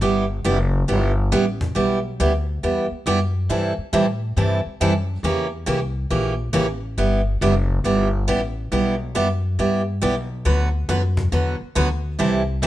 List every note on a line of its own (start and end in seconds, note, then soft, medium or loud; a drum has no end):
0.01 0.44 G1 medium
0.01 0.24 G3 medium
0.01 0.24 B3 medium
0.01 0.24 E4 medium
0.01 0.24 G4 medium
0.44 0.87 F#1 medium
0.44 0.57 G3 medium
0.44 0.57 B3 medium
0.44 0.57 E4 medium
0.44 0.57 G4 medium
0.44 cajon slap soft
0.88 1.31 G1 medium
0.88 1.11 G3 medium
0.88 1.11 B3 medium
0.88 1.11 E4 medium
0.88 1.11 G4 medium
1.32 1.75 A1 medium
1.32 1.44 G3 medium
1.32 1.44 B3 medium
1.32 1.44 E4 medium
1.32 1.44 G4 medium
1.32 cajon slap soft
1.61 cajon bass medium
1.75 2.18 B1 medium
1.75 1.98 G3 medium
1.75 1.98 B3 medium
1.75 1.98 E4 medium
1.75 1.98 G4 medium
2.20 2.62 D2 medium
2.20 2.31 G3 medium
2.20 2.32 B3 medium
2.20 2.32 E4 medium
2.20 2.32 G4 medium
2.20 cajon slap soft
2.63 2.89 E2 medium
2.63 2.85 G3 soft
2.63 2.85 B3 medium
2.63 2.86 E4 medium
2.63 2.86 G4 medium
2.91 muted upright bass stroke soft
3.06 3.48 F#2 medium
3.06 3.18 G3 medium
3.06 3.18 B3 medium
3.06 3.18 E4 medium
3.06 3.19 G4 medium
3.06 cajon slap soft
3.49 3.76 G2 medium
3.49 3.72 C3 medium
3.49 3.72 E3 medium
3.49 3.72 G3 medium
3.49 3.72 C4 medium
3.49 3.72 E4 medium
3.49 3.73 A4 medium
3.78 muted upright bass stroke soft
3.93 4.35 A2 medium
3.93 4.05 C3 medium
3.93 4.05 E3 medium
3.93 4.05 G3 medium
3.93 4.05 C4 medium
3.93 4.05 E4 medium
3.93 4.05 A4 medium
3.93 cajon slap soft
4.37 4.63 G2 medium
4.37 4.59 C3 medium
4.37 4.59 E3 medium
4.37 4.59 G3 medium
4.37 4.59 C4 medium
4.37 4.59 E4 medium
4.37 4.60 A4 medium
4.66 muted upright bass stroke soft
4.80 5.22 F#2 medium
4.80 4.92 C3 medium
4.80 4.92 E3 medium
4.80 4.92 G3 medium
4.80 4.93 C4 medium
4.80 4.93 E4 medium
4.80 4.93 A4 medium
4.80 cajon slap soft
5.23 5.66 E2 medium
5.23 5.46 C#3 medium
5.23 5.46 E3 medium
5.23 5.46 A#3 medium
5.23 5.46 C#4 medium
5.23 5.46 G4 medium
5.66 6.09 C2 medium
5.66 5.79 C#3 medium
5.66 5.79 E3 medium
5.66 5.79 A#3 medium
5.66 5.79 C#4 medium
5.66 5.79 G4 medium
5.66 cajon slap soft
6.10 6.53 A#1 medium
6.10 6.33 C#3 medium
6.10 6.33 E3 medium
6.10 6.33 A#3 medium
6.10 6.33 C#4 medium
6.10 6.33 G4 medium
6.53 6.97 A1 medium
6.53 6.65 C#3 medium
6.53 6.65 E3 medium
6.53 6.66 A#3 medium
6.53 6.66 C#4 medium
6.53 6.66 G4 medium
6.53 cajon slap soft
6.97 7.40 G1 medium
6.97 7.20 G3 medium
6.97 7.20 B3 medium
6.97 7.20 E4 medium
6.97 7.20 G4 medium
7.41 7.83 F#1 loud
7.41 7.53 G3 medium
7.41 7.53 B3 medium
7.41 7.53 E4 medium
7.41 7.54 G4 medium
7.41 cajon slap soft
7.84 8.26 G1 medium
7.84 8.07 G3 medium
7.84 8.07 B3 medium
7.84 8.07 E4 medium
7.84 8.07 G4 medium
8.28 8.70 A1 medium
8.28 8.40 G3 medium
8.28 8.40 B3 medium
8.28 8.40 E4 medium
8.28 8.40 G4 medium
8.28 cajon slap soft
8.72 9.14 B1 medium
8.72 8.94 G3 medium
8.72 8.94 B3 medium
8.72 8.94 E4 medium
8.72 8.94 G4 medium
9.15 9.57 F#2 medium
9.15 9.27 G3 medium
9.15 9.27 B3 medium
9.15 9.27 E4 medium
9.15 9.27 G4 medium
9.15 cajon slap soft
9.59 10.01 G2 medium
9.59 9.81 G3 medium
9.59 9.81 B3 medium
9.59 9.81 E4 medium
9.59 9.81 G4 medium
10.02 10.44 B1 medium
10.02 10.13 G3 medium
10.02 10.14 B3 medium
10.02 10.14 E4 medium
10.02 10.14 G4 medium
10.02 cajon slap soft
10.45 10.87 D2 medium
10.45 10.67 D3 medium
10.45 10.68 F#3 medium
10.45 10.68 B3 medium
10.45 10.68 F#4 medium
10.45 10.68 B4 medium
10.89 11.31 F#2 loud
10.89 11.01 D3 medium
10.89 11.01 F#3 medium
10.89 11.01 B3 medium
10.89 11.01 F#4 medium
10.89 11.01 B4 medium
10.89 cajon slap soft
11.17 cajon bass medium
11.32 11.59 E2 medium
11.32 11.54 D3 soft
11.32 11.54 F#3 medium
11.32 11.55 B3 medium
11.32 11.55 F#4 medium
11.32 11.55 B4 medium
11.61 muted upright bass stroke soft
11.75 12.18 D2 medium
11.75 11.87 D3 medium
11.75 11.88 F#3 medium
11.75 11.88 B3 medium
11.75 11.88 F#4 medium
11.75 11.88 B4 medium
11.75 cajon slap soft
12.19 12.61 C2 medium
12.19 12.41 C3 medium
12.19 12.41 E3 medium
12.19 12.41 G3 medium
12.19 12.42 C4 medium
12.19 12.42 E4 medium
12.19 12.42 A4 medium
12.62 12.67 E2 medium
12.62 12.67 C3 medium
12.62 12.67 E3 medium
12.62 12.67 G3 medium
12.62 12.67 C4 medium
12.62 12.67 E4 medium
12.62 12.67 A4 medium
12.62 cajon slap soft